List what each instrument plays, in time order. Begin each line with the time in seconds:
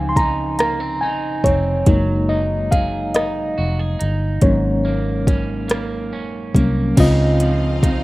Already playing: fingered electric bass C#2, clean electric guitar C#3 C4 D#4, reed electric piano F3 C4 D#4 F5 G#5
0.09 reed electric piano C6
0.16 clean electric guitar D#4, reed electric piano A#5, kick, closed hi-hat
0.59 clean electric guitar A#3, reed electric piano A#5, cross-stick, closed hi-hat
0.80 clean electric guitar C4
1.01 fingered electric bass A#1, clean electric guitar D#4, reed electric piano G#5
1.44 fingered electric bass F1, clean electric guitar C4, reed electric piano C#5, kick, closed hi-hat
1.86 fingered electric bass F#1, clean electric guitar F#3, reed electric piano G#3 A#3 D#4, kick, closed hi-hat
2.29 clean electric guitar D#4, reed electric piano D#5
2.71 clean electric guitar G#4, reed electric piano F5, kick, closed hi-hat
3.14 clean electric guitar D#4, reed electric piano D#5, cross-stick, closed hi-hat
3.58 fingered electric bass F1, clean electric guitar F#4
3.79 clean electric guitar G#4
3.99 fingered electric bass G1, clean electric guitar D#4, closed hi-hat
4.41 fingered electric bass G#1, clean electric guitar G#2, reed electric piano F#3 A#3 C#4 C#5, kick, closed hi-hat
4.85 clean electric guitar A#3
5.27 clean electric guitar C#4, kick, closed hi-hat
5.68 clean electric guitar A#3, cross-stick, closed hi-hat
6.13 fingered electric bass F1, clean electric guitar C#4
6.55 fingered electric bass C2, reed electric piano F#3 A#3 C#4, clean electric guitar A#3, kick, closed hi-hat
6.97 fingered electric bass C#2, clean electric guitar C#3 D#4, reed electric piano C#3 C4 F4 D#5, string section C4 D#5 F5, kick, closed hi-hat, crash
7.39 clean electric guitar F3, closed hi-hat
7.83 clean electric guitar D#4, kick, closed hi-hat